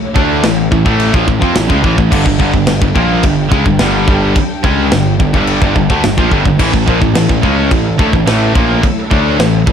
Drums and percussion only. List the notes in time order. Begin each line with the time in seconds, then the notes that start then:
0.16 kick
0.43 snare, china
0.72 kick
0.86 kick
1.00 china
1.14 kick
1.28 kick
1.42 kick
1.55 snare, china
1.70 kick
1.84 kick
1.98 kick
2.12 kick, china, crash
2.26 kick
2.40 kick
2.54 kick
2.67 snare, china
2.82 kick
2.96 kick
3.23 kick, china
3.52 kick
3.66 kick
3.79 snare, china
4.08 kick
4.36 kick, china
4.64 kick
4.92 snare, china
5.20 kick
5.34 kick
5.47 china
5.62 kick
5.76 kick
5.90 kick
6.04 snare, china
6.18 kick
6.31 kick
6.45 kick
6.59 kick, crash, china
6.74 kick
6.88 kick
7.02 kick
7.15 snare, china
7.29 kick
7.43 kick
7.71 kick, china
7.99 kick
8.13 kick
8.27 snare, china
8.55 kick
8.83 kick, china
9.11 kick
9.40 snare, china
9.67 kick